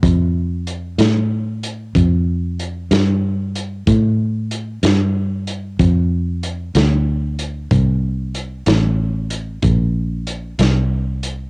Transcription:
<<
  \new Staff \with { instrumentName = "Fingered electric bass" } { \clef bass \time 12/8 \key f \major \tempo 4. = 63 f,4. a,4. f,4. g,4. | a,4. g,4. f,4. d,4. | c,4. a,,4. bes,,4. c,4. | }
  \new DrumStaff \with { instrumentName = "Drums" } \drummode { \time 12/8 <hh bd>4 hh8 <hh sn>4 hh8 <hh bd>4 hh8 <hh sn>4 hh8 | <hh bd>4 hh8 <hh sn>4 hh8 <hh bd>4 hh8 <hh sn>4 hh8 | <hh bd>4 hh8 <hh sn>4 hh8 <hh bd>4 hh8 <hh sn>4 hh8 | }
>>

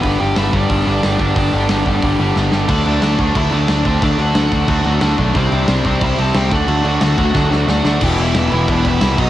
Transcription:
<<
  \new Staff \with { instrumentName = "Lead electric guitar" } { \time 4/4 \key d \mixolydian \tempo 4 = 180 <b b'>8 <g' g''>8 <e' e''>8 <d' d''>2~ <d' d''>8~ | <d' d''>2. r4 | <d' d''>4. r8 <e' e''>8 <d' d''>4 <c' c''>8 | <d' d''>8 <fis' fis''>2. r8 |
<d' d''>2 <e' e''>8 <a' a''>8 <g' g''>8 <fis' fis''>8~ | <fis' fis''>2. <fis' fis''>4 | <g' g''>8 <e' e''>4 <e' e''>8 <d' d''>8 <e' e''>4 <dis' dis''>8 | }
  \new Staff \with { instrumentName = "Overdriven electric guitar" } { \time 4/4 \key d \mixolydian <g b d' g'>8 <g b d' g'>8 <g b d' g'>8 <g b d' g'>8 <g b d' g'>8 <g b d' g'>8 <g b d' g'>8 <g b d' g'>8 | <g b d' g'>8 <g b d' g'>8 <g b d' g'>8 <g b d' g'>8 <g b d' g'>8 <g b d' g'>8 <g b d' g'>8 <g b d' g'>8 | <d fis a d'>8 <d fis a d'>8 <d fis a d'>8 <d fis a d'>8 <d fis a d'>8 <d fis a d'>8 <d fis a d'>8 <d fis a d'>8 | <d fis a d'>8 <d fis a d'>8 <d fis a d'>8 <d fis a d'>8 <d fis a d'>8 <d fis a d'>8 <d fis a d'>8 <d fis a d'>8 |
<c g c' e'>8 <c g c' e'>8 <c g c' e'>8 <c g c' e'>8 <c g c' e'>8 <c g c' e'>8 <c g c' e'>8 <d fis a d'>8 | <d fis a d'>8 <d fis a d'>8 <d fis a d'>8 <d fis a d'>8 <d fis a d'>8 <d fis a d'>8 <d fis a d'>8 <d fis a d'>8 | <e b e' g'>8 <e b e' g'>8 <e b e' g'>8 <e b e' g'>8 <e b e' g'>8 <e b e' g'>8 <e b e' g'>8 <b, fis b dis' fis'>8 | }
  \new Staff \with { instrumentName = "Overdriven electric guitar" } { \clef bass \time 4/4 \key d \mixolydian <g, d g>8 <g, d g>8 <g, d g>8 <g, d g>8 <g, d g>8 <g, d g>8 <g, d g>8 <g, d g>8 | <g, d g>8 <g, d g>8 <g, d g>8 <g, d g>8 <g, d g>8 <g, d g>8 <g, d g>8 <g, d g>8 | <d a d'>8 <d a d'>8 <d a d'>8 <d a d'>8 <d a d'>8 <d a d'>8 <d a d'>8 <d a d'>8 | <d a d'>8 <d a d'>8 <d a d'>8 <d a d'>8 <d a d'>8 <d a d'>8 <d a d'>8 <d a d'>8 |
<c g c'>8 <c g c'>8 <c g c'>8 <c g c'>8 <c g c'>8 <c g c'>8 <c g c'>8 <d a d'>8 | <d a d'>8 <d a d'>8 <d a d'>8 <d a d'>8 <d a d'>8 <d a d'>8 <d a d'>8 <d a d'>8 | <e, b, e>8 <e, b, e>8 <e, b, e>8 <e, b, e>8 <e, b, e>8 <e, b, e>8 <e, b, e>8 <b, fis b>8 | }
  \new Staff \with { instrumentName = "Picked electric bass" } { \clef bass \time 4/4 \key d \mixolydian g,,8 g,,8 g,,8 g,,8 g,,8 g,,8 g,,8 g,,8 | g,,8 g,,8 g,,8 g,,8 g,,8 g,,8 g,,8 g,,8 | d,8 d,8 d,8 d,8 d,8 d,8 d,8 d,8 | d,8 d,8 d,8 d,8 d,8 d,8 d,8 b,,8 |
c,8 c,8 c,8 c,8 c,8 c,8 c,8 d,8 | d,8 d,8 d,8 d,8 d,8 d,8 d,8 d,8 | e,,8 e,,8 e,,8 e,,8 e,,8 e,,8 c,8 b,,8 | }
  \new DrumStaff \with { instrumentName = "Drums" } \drummode { \time 4/4 <hho bd>4 <hho sn>8 bd8 <hho bd>4 <hho sn>8 bd8 | <hho bd>4 <hho sn>8 bd8 <hho bd>4 sn8 sn8 | <cymc bd>8 cymc8 <cymc sn>8 <cymc bd>8 <cymc bd>8 cymc8 <cymc sn>8 <cymc bd>8 | <cymc bd>8 cymc8 <cymc sn>8 <cymc bd>8 <cymc bd>8 cymc8 <cymc sn>8 <cymc bd>8 |
<cymc bd>8 cymc8 <cymc sn>8 <cymc bd>8 <cymc bd>8 cymc8 <cymc sn>8 <cymc bd>8 | cymc8 cymc8 <cymc sn>8 <cymc bd>8 <bd sn>8 sn8 sn8 sn8 | <cymc bd>8 cymc8 <cymc sn>8 cymc8 <cymc bd>8 <cymc bd>8 <cymc sn>8 <cymc bd>8 | }
>>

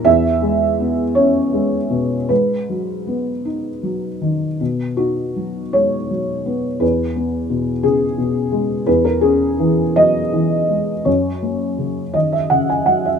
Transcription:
<<
  \new Staff \with { instrumentName = "Felt piano" } { \time 6/8 \key b \major \tempo 4. = 55 e''4. cis''4. | b'4. r4. | r8 fis'4 cis''4. | b'4. gis'4. |
b'16 ais'16 gis'4 dis''4. | cis''4. dis''16 e''16 fis''16 gis''16 fis''16 e''16 | }
  \new Staff \with { instrumentName = "Felt piano" } { \clef bass \time 6/8 \key b \major e,8 gis8 b8 cis'8 gis8 b,8 | gis,8 fis8 b8 dis'8 fis8 dis8 | b,8 dis'8 fis8 gis8 fis8 b8 | e,8 b8 b,8 cis8 b,8 gis8 |
e,8 cis'8 e8 fis8 e8 gis8 | fis,8 ais8 cis8 dis8 cis8 fis8 | }
>>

